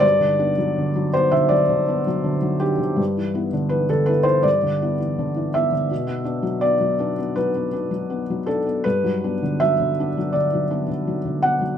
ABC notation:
X:1
M:4/4
L:1/16
Q:1/4=81
K:G
V:1 name="Felt piano"
d6 c e d6 G2 | z4 B A B c d6 e2- | e4 d4 B6 A2 | B4 e4 d6 f2 |]
V:2 name="Felt piano" clef=bass
[G,,F,] D, [B,D] F, D, F, [B,D] D, F, D, [B,D] F, D, F, [B,D] D, | G,, E, [B,E] D, E, D, [B,E] E, G,, D, [B,E] E, D, E, [B,E] D, | B,, B, [B,D] F, B, F, [B,D] B, F, B, [B,D] F, B, F, [B,D] B, | G,, F, [B,D] D, F, D, [B,D] F, D, F, [B,D] D, F, D, [B,D] F, |]